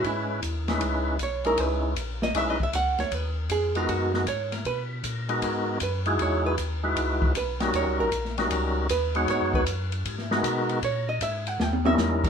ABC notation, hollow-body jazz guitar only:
X:1
M:4/4
L:1/8
Q:"Swing" 1/4=156
K:G#m
V:1 name="Hollow-body jazz guitar"
E4 z2 c A | B3 d (3e d e f c | B A G ^E F2 c A | B z4 z B2 |
c B2 z3 B2 | c A2 z3 B2 | c B2 z4 z | c d e f =g e z2 |]